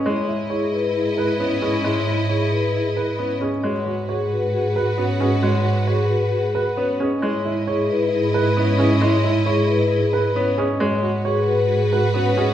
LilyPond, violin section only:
\new Staff \with { instrumentName = "Violin section" } { \time 4/4 \key e \lydian \tempo 4 = 134 <e' dis''>1~ | <e' dis''>2.~ <e' dis''>8 r8 | <fis' b'>1~ | <fis' b'>2.~ <fis' b'>8 r8 |
<e' dis''>1~ | <e' dis''>2.~ <e' dis''>8 r8 | <fis' b'>1 | }